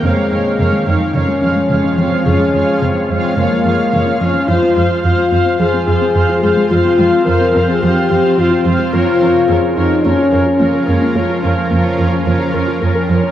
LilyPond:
<<
  \new Staff \with { instrumentName = "Viola section" } { \time 4/4 \key f \minor \tempo 4 = 108 <des'' f''>8 <des'' f''>8 <des'' f''>8 <des'' f''>8 <des'' f''>8 <des'' f''>8 <des'' f''>8 <des'' f''>8 | <des'' f''>8 <des'' f''>8 <des'' f''>8 <des'' f''>8 <des'' f''>8 <des'' f''>8 <des'' f''>8 <des'' f''>8 | <c'' f''>8 <c'' f''>8 <c'' f''>8 <c'' f''>8 <c'' f''>8 <c'' f''>8 <c'' f''>8 <c'' f''>8 | <c'' f''>8 <c'' f''>8 <c'' f''>8 <c'' f''>8 <c'' f''>8 <c'' f''>8 <c'' f''>8 <c'' f''>8 |
<bes' des''>8 <bes' des''>8 <bes' des''>8 <bes' des''>8 <bes' des''>8 <bes' des''>8 <bes' des''>8 <bes' des''>8 | <bes' des''>8 <bes' des''>8 <bes' des''>8 <bes' des''>8 <bes' des''>8 <bes' des''>8 <bes' des''>8 <bes' des''>8 | }
  \new Staff \with { instrumentName = "Grand piano" } { \time 4/4 \key f \minor <c' aes' c''>2. r4 | <aes aes'>2. r4 | r2 r8 aes'4.~ | aes'4. bes'2~ bes'8~ |
bes'8 r8 aes'2~ aes'8 <aes aes'>8~ | <aes aes'>2~ <aes aes'>8 r4. | }
  \new Staff \with { instrumentName = "Ambient pad" } { \time 4/4 \key f \minor <f aes f' f''>1~ | <f aes f' f''>1 | <f c' f' c''>1~ | <f c' f' c''>1 |
<f des' f' bes'>1~ | <f des' f' bes'>1 | }
  \new Staff \with { instrumentName = "French horn section" } { \time 4/4 \key f \minor aes4. ees'8 des'4. c'8 | des'4 c'4 bes4. des'8 | f'4 f'4 aes'4. aes'8 | f'4 bes'8. aes'16 g'4 f'8 r8 |
f'4. ees'8 des'4. bes8 | f2. \tuplet 3/2 { des'8 c'8 des'8 } | }
  \new Staff \with { instrumentName = "Synth arpeggio sound" } { \time 4/4 \key f \minor des16 aes16 f16 r16 des16 aes16 aes16 aes16 des16 aes16 des'16 aes16 des16 des'16 f16 f16 | des16 aes16 f16 r16 des16 aes16 aes16 aes16 des16 aes16 des'16 aes16 des16 des'16 f16 f16 | f16 c'16 aes16 r16 f16 c'16 c'16 c'16 f16 c'16 f'16 c'16 f16 f'16 aes16 aes16 | f16 c'16 aes16 r16 f16 c'16 c'16 c'16 f16 c'16 f'16 c'16 f16 f'16 aes16 aes16 |
bes16 f'16 des'16 r16 bes16 f'16 f'16 f'16 bes16 f'16 bes'16 f'16 bes16 bes'16 des'16 des'16 | bes16 f'16 des'16 r16 bes16 f'16 f'16 f'16 bes16 f'16 bes'16 f'16 bes16 bes'16 des'16 des'16 | }
  \new Staff \with { instrumentName = "Cello section" } { \clef bass \time 4/4 \key f \minor f,8 f,8 f,8 f,8 f,8 f,8 f,8 f,8 | f,8 f,8 f,8 f,8 f,8 f,8 f,8 f,8 | f,8 f,8 f,8 f,8 f,8 f,8 f,8 f,8 | f,8 f,8 f,8 f,8 f,8 f,8 f,8 f,8 |
f,8 f,8 f,8 f,8 f,8 f,8 f,8 f,8 | f,8 f,8 f,8 f,8 f,8 f,8 f,8 f,8 | }
>>